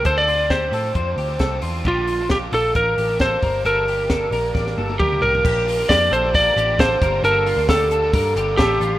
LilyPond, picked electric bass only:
\new Staff \with { instrumentName = "Picked electric bass" } { \clef bass \time 4/4 \key bes \lydian \tempo 4 = 134 d,4. a,8 f,8 d,8 c,8 e,8 | bes,,4. bes,,8 a,,8 a,,4 g,,8 | g,,4. bes,,8 a,,8 g,,8 d,8 c,8 | bes,,4 f,8 bes,,4 a,,4 g,,8 |
g,,8. d,4~ d,16 g,8 g,,8 a,,8 a,,8 | }